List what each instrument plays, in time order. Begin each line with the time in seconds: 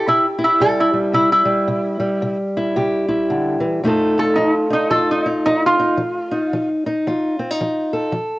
Already playing: steel-string acoustic guitar E4 G4
0.07 steel-string acoustic guitar C3, resonator guitar played with a steel bar E4
0.39 steel-string acoustic guitar E4
0.44 resonator guitar played with a steel bar E4
0.60 steel-string acoustic guitar C3 G3, resonator guitar played with a steel bar A4
0.80 resonator guitar played with a steel bar E4
0.93 steel-string acoustic guitar G3
1.13 steel-string acoustic guitar C3, resonator guitar played with a steel bar E4
1.32 resonator guitar played with a steel bar E4
1.45 steel-string acoustic guitar G3
1.68 steel-string acoustic guitar C3
2.00 steel-string acoustic guitar G3
2.22 steel-string acoustic guitar C3
2.57 steel-string acoustic guitar E4
2.76 steel-string acoustic guitar C3 G4
3.08 steel-string acoustic guitar E4
3.30 steel-string acoustic guitar D3
3.60 steel-string acoustic guitar E3
3.83 steel-string acoustic guitar F3 A3 D#4 F4 A4
4.18 steel-string acoustic guitar F4, resonator guitar played with a steel bar A4
4.36 steel-string acoustic guitar F3, resonator guitar played with a steel bar D#4
4.70 steel-string acoustic guitar D#4, resonator guitar played with a steel bar D#4
4.91 steel-string acoustic guitar F3 F4, resonator guitar played with a steel bar A4
5.11 resonator guitar played with a steel bar D#4
5.26 steel-string acoustic guitar D#4
5.46 steel-string acoustic guitar F3, resonator guitar played with a steel bar D#4
5.66 resonator guitar played with a steel bar F4
5.79 steel-string acoustic guitar D#4
5.97 steel-string acoustic guitar F3
6.31 steel-string acoustic guitar D#4
6.53 steel-string acoustic guitar F3
6.86 steel-string acoustic guitar D#4
7.07 steel-string acoustic guitar F3 F4
7.39 steel-string acoustic guitar C4
7.51 steel-string acoustic guitar D#4
7.61 steel-string acoustic guitar F3
7.93 steel-string acoustic guitar A4
8.12 steel-string acoustic guitar F3